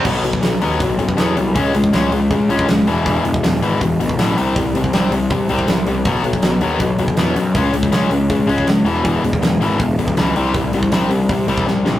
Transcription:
<<
  \new Staff \with { instrumentName = "Distorted electric guitar" } { \clef bass \time 4/4 \key b \mixolydian \tempo 4 = 160 <b, fis b>8 <b, fis>8 <b, fis>8 <b, fis b>8 <b, fis>8 <b, fis>8 <b, fis b>8 <b, fis>8 | <cis gis cis'>8 <cis gis>8 <cis gis cis'>8 <cis gis>8 <cis gis>8 <cis gis cis'>8 <cis gis>8 <e, b, e>8 | <e, b, e>8 <e, b,>8 <e, b,>8 <e, b, e>8 <e, b,>8 <e, b,>8 <e, b, e>8 <c g c'>8 | <c g>8 <c g>8 <c g c'>8 <c g>8 <c g>8 <c g c'>8 <c g>8 <c g>8 |
<b, fis b>8 <b, fis>8 <b, fis>8 <b, fis b>8 <b, fis>8 <b, fis>8 <b, fis b>8 <b, fis>8 | <cis gis cis'>8 <cis gis>8 <cis gis cis'>8 <cis gis>8 <cis gis>8 <cis gis cis'>8 <cis gis>8 <e, b, e>8 | <e, b, e>8 <e, b,>8 <e, b,>8 <e, b, e>8 <e, b,>8 <e, b,>8 <e, b, e>8 <c g c'>8 | <c g>8 <c g>8 <c g c'>8 <c g>8 <c g>8 <c g c'>8 <c g>8 <c g>8 | }
  \new Staff \with { instrumentName = "Picked electric bass" } { \clef bass \time 4/4 \key b \mixolydian b,,8 b,,8 b,,8 dis,8 b,,8 fis,,8 e,8 c,8 | cis,8 cis,8 cis,8 cis,8 cis8 cis,8 cis,8 e,,8 | e,,8 e,,8 e,,8 gis,,8 e,,8 b,,8 a,,8 c,8 | c,8 c,8 c,8 c,8 c8 c,8 c,8 c,8 |
b,,8 b,,8 b,,8 dis,8 b,,8 fis,,8 e,8 fis,8 | cis,8 cis,8 cis,8 cis,8 cis8 cis,8 cis,8 e,,8 | e,,8 e,,8 e,,8 gis,,8 e,,8 b,,8 cis,8 c,8 | c,8 c,8 c,8 c,8 c8 c,8 c,8 ais,,8 | }
  \new DrumStaff \with { instrumentName = "Drums" } \drummode { \time 4/4 <cymc bd>8 hho16 bd16 <hho sn>8 hho8 <hho bd>8 hho16 bd16 <hho sn>8 hho8 | <hho bd>8 hho16 bd16 <hho sn>8 hho8 <hho bd>8 hho16 bd16 <hho sn>8 hho8 | <hho bd>8 hho16 bd16 <hho sn>8 hho8 <hho bd>8 hho16 bd16 <hho sn>8 hho8 | <hho bd>8 hho16 bd16 <hho sn>8 hho8 <hho bd>8 hho16 bd16 <hho sn>8 hho8 |
<hho bd>8 hho16 bd16 <hho sn>8 hho8 <hho bd>8 hho16 bd16 <hho sn>8 hho8 | <hho bd>8 hho16 bd16 <hho sn>8 hho8 <hho bd>8 hho16 bd16 <hho sn>8 hho8 | <hho bd>8 hho16 bd16 <hho sn>8 hho8 <hho bd>8 hho16 bd16 <hho sn>8 hho8 | <hho bd>8 hho16 bd16 <hho sn>8 hho8 <hho bd>8 hho16 bd16 sn8 sn8 | }
>>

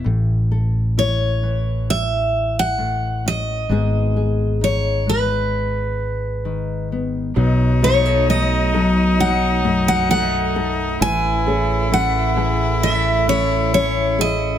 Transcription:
<<
  \new Staff \with { instrumentName = "Steel-string acoustic guitar" } { \time 4/4 \key b \mixolydian \tempo 4 = 66 r4 cis''4 e''8. fis''8. dis''8~ | dis''4 cis''8 b'2 r8 | r8 cis''8 dis''4 fis''8. fis''16 fis''4 | gis''4 fis''4 e''8 cis''8 cis''8 dis''8 | }
  \new Staff \with { instrumentName = "Violin" } { \time 4/4 \key b \mixolydian r1 | r1 | dis'1 | e'1 | }
  \new Staff \with { instrumentName = "Nylon-string guitar" } { \time 4/4 \key b \mixolydian << { r8 a'8 e'2~ e'8 cis'8 | <gis b dis' gis'>8 gis'8 dis'2~ dis'8 b8 | dis'8 fis'16 a'16 a8 a'8 dis'8 a8 dis'8 a'8 | e'8 gis'8 cis'8 gis'8 e'8 cis'8 e'8 gis'8 | } \\ { <a, e>4. e4. a,4 | gis,4. gis4. dis4 | b,4. fis4 fis,4. | a,4. e4 a,4. | } >> }
  \new Staff \with { instrumentName = "Clean electric guitar" } { \time 4/4 \key b \mixolydian r1 | r1 | fis8 <fis a dis'>8 fis8 dis'8 fis4 a4 | e8 <a cis' gis'>8 a8 gis'8 a4 cis'4 | }
  \new Staff \with { instrumentName = "Fingered electric bass" } { \clef bass \time 4/4 \key b \mixolydian a,,1 | gis,,1 | b,,1 | a,,1 | }
>>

